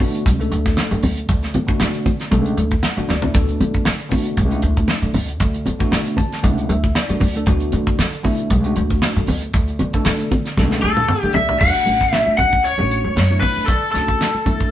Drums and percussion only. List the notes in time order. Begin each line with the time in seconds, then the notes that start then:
0.00 kick, open hi-hat, high conga, low conga
0.15 closed hi-hat
0.26 kick, closed hi-hat
0.41 closed hi-hat
0.52 closed hi-hat
0.66 kick, snare, closed hi-hat, high conga
0.77 snare, closed hi-hat
0.91 closed hi-hat
1.03 open hi-hat, low conga
1.17 closed hi-hat
1.29 kick, closed hi-hat
1.43 snare, closed hi-hat
1.54 closed hi-hat, high conga, low conga
1.68 kick, closed hi-hat
1.80 snare, closed hi-hat
1.94 closed hi-hat
2.06 kick, closed hi-hat, high conga, low conga
2.20 snare, closed hi-hat
2.31 kick, closed hi-hat, high conga
2.46 closed hi-hat
2.58 closed hi-hat
2.71 kick, closed hi-hat, high conga
2.83 snare, closed hi-hat, high conga
2.97 closed hi-hat, high conga
3.09 snare, low conga
3.22 floor tom, low conga
3.34 kick, closed hi-hat
3.49 closed hi-hat
3.60 closed hi-hat, high conga, low conga
3.74 kick, closed hi-hat
3.85 snare, closed hi-hat
3.99 closed hi-hat
4.11 kick, open hi-hat, high conga, low conga
4.26 closed hi-hat
4.37 kick, closed hi-hat
4.51 closed hi-hat
4.62 closed hi-hat
4.77 kick, closed hi-hat, high conga
4.88 snare, closed hi-hat
5.03 closed hi-hat
5.14 open hi-hat, low conga
5.28 closed hi-hat
5.40 kick, closed hi-hat
5.54 closed hi-hat
5.66 closed hi-hat, high conga, low conga
5.80 kick, closed hi-hat
5.92 snare, closed hi-hat
6.06 closed hi-hat
6.17 kick, closed hi-hat, high conga, low conga
6.32 snare, closed hi-hat
6.44 kick, closed hi-hat
6.58 closed hi-hat
6.70 closed hi-hat
6.83 kick, closed hi-hat, high conga
6.95 snare, closed hi-hat
7.09 closed hi-hat
7.20 kick, open hi-hat, low conga
7.35 closed hi-hat
7.46 kick, closed hi-hat
7.60 closed hi-hat
7.72 closed hi-hat, high conga, low conga
7.87 kick, closed hi-hat
7.99 snare, closed hi-hat
8.13 closed hi-hat
8.24 kick, open hi-hat, high conga, low conga
8.39 closed hi-hat
8.50 kick, closed hi-hat
8.64 closed hi-hat
8.76 closed hi-hat
8.90 kick, closed hi-hat, high conga
9.02 snare, closed hi-hat
9.16 closed hi-hat
9.27 open hi-hat, low conga
9.42 closed hi-hat
9.54 kick, closed hi-hat
9.68 closed hi-hat
9.79 closed hi-hat, high conga, low conga
9.93 kick, closed hi-hat
10.05 snare, closed hi-hat
10.20 closed hi-hat
10.31 kick, closed hi-hat, high conga, low conga
10.46 snare, closed hi-hat
10.57 kick, snare, high conga
10.71 snare
10.97 high tom, high conga
11.08 mid tom, low conga
11.23 high conga
11.34 floor tom, low conga
11.49 floor tom
11.60 kick, crash
11.86 closed hi-hat, high conga
12.01 kick, snare
12.13 snare, closed hi-hat
12.27 high conga
12.38 kick, closed hi-hat, low conga
12.53 kick
12.65 closed hi-hat
12.78 low conga
12.91 closed hi-hat
13.16 snare, closed hi-hat, high conga
13.30 high conga
13.42 kick, open hi-hat, low conga
13.68 kick, closed hi-hat
13.95 snare, closed hi-hat
14.08 kick
14.21 snare, closed hi-hat
14.35 high conga
14.46 kick, closed hi-hat, low conga
14.61 kick